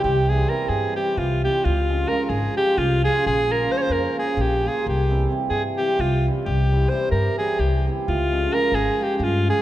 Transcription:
<<
  \new Staff \with { instrumentName = "Alto saxophone" } { \time 7/8 \tempo 4 = 131 g'8 aes'8 bes'8 aes'8 g'8 f'8 g'8 | f'4 bes'16. bes'32 aes'8 g'8 f'8 aes'8 | aes'8 bes'8 c''32 des''32 c''16 bes'8 aes'8 g'8 aes'8 | g'4 r8 aes'8 g'8 f'8 r8 |
g'4 c''8 bes'8 aes'8 g'8 r8 | f'4 bes'8 aes'8 g'16. g'32 f'8 aes'8 | }
  \new Staff \with { instrumentName = "Hammered dulcimer" } { \clef bass \time 7/8 r8 <c e g c' e'>8 <c e g c' e'>8 r8 <c e g c' e'>8 r8 <c e g c' e'>8 | r8 <des f aes des' f'>8 <des f aes des' f'>8 r8 <des f aes des' f'>8 r8 <des f aes des' f'>8 | r8 <des f bes des' f'>8 <des f bes des' f'>8 r8 <des f bes des' f'>8 r8 <des f bes des' f'>8 | r8 <c e g c' e'>8 <c e g c' e'>8 r8 <c e g c' e'>8 r8 <c e g c' e'>8 |
r8 <c e g c' e'>8 <c e g c' e'>8 r8 <c e g c' e'>8 r8 <c e g c' e'>8 | r8 <des f aes des' f'>8 <des f aes des' f'>8 r8 <des f aes des' f'>8 r8 <des f aes des' f'>8 | }
  \new Staff \with { instrumentName = "Upright bass" } { \clef bass \time 7/8 c,4. g,8 r8 c,4 | des,4. aes,,8 r8 c,4 | bes,,4. f,8 r8 bes,,4 | c,4. g,8 r8 c,4 |
c,4. g,8 r8 c,4 | des,4. aes,,8 r8 g,4 | }
>>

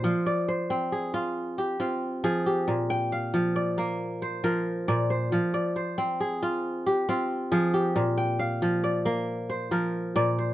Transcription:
<<
  \new Staff \with { instrumentName = "Kora" } { \time 12/8 \key f \dorian \tempo 4. = 91 <c'' d''>8 d''8 c''4 aes'4. g'8 f'4 aes'8 g'8~ | g'8 g''8 f''4 d''4. c''8 bes'4 d''8 c''8~ | c''8 d''8 c''4 aes'4. g'8 f'4 aes'8 g'8~ | g'8 g''8 f''4 d''4. c''8 bes'4 d''8 c''8 | }
  \new Staff \with { instrumentName = "Kora" } { \clef bass \time 12/8 \key f \dorian f4 r8 c'4 f'4 r8 c'4 f4 | bes,4 r8 f4 bes4 r8 f4 bes,4 | f4 r8 c'4 f'4 r8 c'4 f4 | bes,4 r8 f4 bes4 r8 f4 bes,4 | }
>>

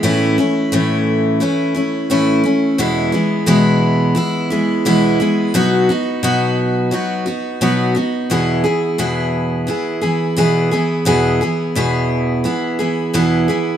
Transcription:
\new Staff \with { instrumentName = "Steel-string acoustic guitar" } { \time 4/4 \key e \major \tempo 4 = 87 <a, e a cis' e'>8 <a cis' e'>8 <a, e a cis' e'>4 <e a cis' e'>8 <a cis' e'>8 <a, e a cis' e'>8 <a cis' e'>8 | <e, b, e gis b e'>8 <e gis b e'>8 <e, b, e gis b e'>4 <e gis b e'>8 <e gis b e'>8 <e, b, e gis b e'>8 <e gis b e'>8 | <b, fis b dis' fis'>8 <b dis' fis'>8 <b, fis b dis' fis'>4 <fis b dis' fis'>8 <b dis' fis'>8 <b, fis b dis' fis'>8 <b dis' fis'>8 | <e, b, e b e' gis'>8 <e b e' gis'>8 <e, b, e b e' gis'>4 <e b e' gis'>8 <e b e' gis'>8 <e, b, e b e' gis'>8 <e b e' gis'>8 |
<e, b, e b e' gis'>8 <e b e' gis'>8 <e, b, e b e' gis'>4 <e b e' gis'>8 <e b e' gis'>8 <e, b, e b e' gis'>8 <e b e' gis'>8 | }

